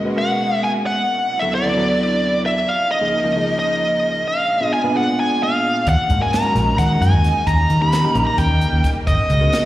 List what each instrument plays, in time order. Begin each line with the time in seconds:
Already playing: analog synth pad B2 G#3 A#3 F#4
0.05 reed electric piano G#3 C#4 F#4 B4
0.16 reed electric piano G#3 C#4 F#4 A#4, lead electric guitar F#5
0.64 lead electric guitar G#5
0.86 lead electric guitar F#5
1.08 analog synth pad C3 F#3 D4 E4
1.39 reed electric piano D2 F#3 B3 E4 A4, lead electric guitar E5
1.55 lead electric guitar D5
1.65 reed electric piano D2 F#3 B3 E4 A4
1.77 reed electric piano D2 F#3 B3 E4 A4
2.46 lead electric guitar E5
2.67 analog synth pad C#3 F3 A#3 D#4, lead electric guitar F5
2.91 lead electric guitar D#5
3.01 reed electric piano C#2 F3 A#3 D#4 G#4
3.24 reed electric piano C#2 F3 A#3 D#4 A#4
3.36 reed electric piano C#2 F3 A#3 D#4 G#4
3.59 lead electric guitar D#5
4.26 analog synth pad A#2 G#3 D4, lead electric guitar F5
4.61 reed electric piano A#2 B3 D4 F4 G#4
4.74 lead electric guitar G#5
4.84 reed electric piano A#2 B3 D4 F4 B4
4.95 reed electric piano A#2 B3 D4 F4 G#4, lead electric guitar F#5
5.20 lead electric guitar G#5
5.43 lead electric guitar F5
5.86 fretless electric bass D#2, analog synth pad C#3 F#3 D#4, lead electric guitar F#5, kick, closed hi-hat
6.10 fretless electric bass G#2, kick, closed hi-hat
6.20 reed electric piano G#3 C#4 F#4 A#4, lead electric guitar G#5
6.33 lead electric guitar A#5, snare, closed hi-hat
6.43 reed electric piano G#3 C#4 F#4 A#4
6.55 fretless electric bass A#1, reed electric piano G#3 C#4 F#4 A#4, snare, closed hi-hat
6.78 fretless electric bass D#3, lead electric guitar F#5, kick, snare, closed hi-hat
7.01 fretless electric bass F#2, lead electric guitar G#5, snare, closed hi-hat
7.12 fretless electric bass D#2
7.24 snare, closed hi-hat
7.47 fretless electric bass D#2, analog synth pad C#3 G3 A#3, lead electric guitar A#5, kick, closed hi-hat
7.70 fretless electric bass D#3, closed hi-hat
7.81 reed electric piano A#3 C#4 D#4 G4, lead electric guitar B5
7.92 snare, closed hi-hat
8.04 reed electric piano A#3 C#4 D#4 G4
8.15 fretless electric bass A#1, reed electric piano A#3 C#4 D#4 A#4, closed hi-hat
8.26 lead electric guitar A#5, muted fretless electric bass stroke
8.38 fretless electric bass D#2, lead electric guitar G5, kick, snare, closed hi-hat
8.61 closed hi-hat
8.73 fretless electric bass D#2
8.84 kick, snare, closed hi-hat
8.96 muted fretless electric bass stroke
9.07 fretless electric bass G#1, analog synth pad B2 G#3 F#4, lead electric guitar D#5, kick, closed hi-hat
9.30 fretless electric bass C#2, kick, closed hi-hat
9.41 reed electric piano G#3 C#4 F#4 A#4
9.53 snare, closed hi-hat